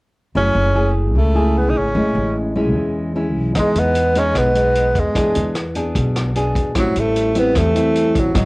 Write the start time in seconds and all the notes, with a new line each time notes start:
0.35 F#1 F#3 A3 C#4 E4 G#4
0.55 F#1
0.74 A3 E4 G#4
1.15 C#2 C#3 A3
1.35 A3 E4 G#4
1.58 B3
1.70 D#4
1.75 G#1 C#4
1.95 A1 A2 G#3 C#4 E4
2.15 A1
2.56 G#3 C#4 E4
2.75 E2 E3
3.15 G#3 C#4 E4
3.35 B1
3.55 E2 E3 G#3 B3 D#4, kick, cross-stick, closed hi-hat
3.59 G#3
3.75 E2 B3, closed hi-hat
3.95 closed hi-hat
4.15 G#3 B3 C#4 D#4, closed hi-hat
4.35 B1 B2 B3, kick, cross-stick, closed hi-hat
4.55 G#3 B3 D#4, closed hi-hat
4.75 closed hi-hat
4.95 E2, kick, closed hi-hat
5.00 G#3
5.15 E2 E3 B3 D4 G#4, kick, cross-stick, closed hi-hat
5.35 E2, closed hi-hat
5.55 cross-stick, closed hi-hat
5.75 B3 D4 G#4, closed hi-hat
5.95 B1 B2, kick, closed hi-hat
6.16 cross-stick, closed hi-hat
6.35 B3 D4 G#4, closed hi-hat
6.55 E2, kick, closed hi-hat
6.75 A1 A2 F#3 G3 C4 E4, kick, cross-stick, closed hi-hat
6.96 A1 A3, closed hi-hat
7.16 closed hi-hat
7.35 G3 B3 C4 E4, closed hi-hat
7.55 E2 E3 A3, kick, cross-stick, closed hi-hat
7.75 G3 C4 E4, closed hi-hat
7.95 closed hi-hat
8.15 A1 F#3, kick, closed hi-hat
8.35 G#1 G#2 F#3 B3 D#4, kick, cross-stick, closed hi-hat